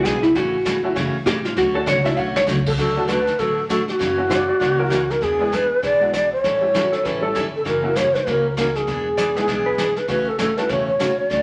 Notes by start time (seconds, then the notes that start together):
0.05 B1 E3 B3 D4 G#4, kick, snare, hi-hat pedal
0.23 E4, snare
0.35 A1 C#3 E3 A3 C#4 F#4, brush sweep, kick, snare
0.65 G1 C#3 E3 A3 C#4 F#4, kick, snare, hi-hat pedal
0.83 F#3 A3 C#4 E4 F#4
0.95 F#1 C#3 E3 A3 C#4 F#4, brush sweep, kick, snare
1.15 muted upright bass stroke
1.26 A1 C#3 E3 A3 C#4 F#4 G4, kick, snare, hi-hat pedal
1.45 F4, snare
1.56 D2 D3 F#3 A3 C#4 F#4, brush sweep, kick, snare
1.74 F#3 A3 C#4 D4 F#4 A4
1.86 C#2 D3 F#3 A3 C#4 F#4 C#5, kick, snare, hi-hat pedal
2.04 F#3 A3 C#4 D4 E4 E5, snare
2.17 B1 D3 F#3 A3 C#4 F#4 F#5
2.36 C#5, snare
2.47 C#2 D3 F#3 A3 C#4 F#4, snare, hi-hat pedal
2.66 A4, kick, crash
2.78 D2 D3 F#3 A3 D4 F#4 A4, brush sweep, kick, snare
2.96 F#3 A3 D4 F#4 A4
3.08 D3 F#3 A3 D4 F#4 B4, kick, snare, hi-hat pedal
3.27 snare
3.39 A1 D3 F#3 A3 D4 F#4 A4, brush sweep, kick, snare
3.69 D3 F#3 A3 D4 F#4 A4, kick, snare, hi-hat pedal
3.88 G4, snare
3.92 F#4
3.99 F#2 C#3 E3 A#3 C#4 F#4, brush sweep, kick, snare
4.17 F#3 A#3 C#4 E4 F#4
4.30 C#3 E3 A#3 C#4 F#4 D5, kick, snare, hi-hat pedal
4.48 F#4 D5
4.60 C#2 C#3 E3 A#3 C#4 F#4 D5, brush sweep, kick, snare
4.78 F#3 A#3 C#4 E4 F#4 A#4
4.90 C#3 E3 A#3 C#4 F#4, kick, snare, hi-hat pedal
5.10 A#4, snare
5.21 E2 E3 B3 D4 G#4, brush sweep, kick, snare
5.39 G#3 B3 D4 E4 G#4
5.52 E3 B3 D4 G#4 B4, kick, snare, hi-hat pedal
5.82 B1 E3 B3 D4 G#4 D5, brush sweep, kick, snare
6.00 G#3 B3 D4 E4 F#4
6.13 E3 B3 D4 G#4 D5, kick, snare, hi-hat pedal
6.32 C5
6.43 A1 E3 G3 C#4 E4 A4 C#5, brush sweep, kick, snare
6.61 G3 A3 C#4 E4 G4
6.74 E3 G3 C#4 E4 F#4 A4, kick, snare, hi-hat pedal
6.92 A4, snare
7.04 A1 E3 G3 C#4 E4 A4 B4, brush sweep, kick, snare
7.21 G3 A3 C#4 E4 A4
7.35 G1 E3 G3 C#4 E4 A4, kick, snare, hi-hat pedal
7.56 A4
7.65 F#1 C#3 E3 A#3 C#4 F#4 A#4, brush sweep, kick, snare
7.83 F#3 A#3 C#4 E4 F#4
7.95 C#3 E3 A#3 C#4 F#4 C#5, kick, snare, hi-hat pedal
8.15 A#4, snare
8.26 C#2 C#3 E3 A#3 C#4 F#4, brush sweep, kick, snare
8.57 C#3 E3 A#3 C#4 F#4 A#4, kick, snare, hi-hat pedal
8.75 G#4, snare
8.87 E1 E3 B3 D4 G#4, brush sweep, kick, snare
9.17 E3 B3 D4 G#4 D5, kick, snare, hi-hat pedal
9.35 G#3 B3 D4 E4 G#4, snare
9.48 B1 E3 B3 D4 G#4, brush sweep, kick, snare
9.66 B4
9.78 E3 B3 D4 G#4, kick, snare, hi-hat pedal
9.96 B4, snare
10.08 A1 C#3 E3 A3 C#4 F#4 B4, brush sweep, kick, snare
10.29 A4
10.38 C#3 E3 A3 C#4 F#4 A4, kick, snare, hi-hat pedal
10.56 A3 C#4 E4 F#4 A4 B4, snare
10.69 E1 C#3 E3 A3 C#4 F#4 C#5, brush sweep, kick, snare
10.88 C#5
10.99 C#3 E3 A3 C#4 F#4, kick, snare, hi-hat pedal
11.19 D5
11.30 D2 D3 F#3 A3 C#4 F#4, brush sweep, kick, snare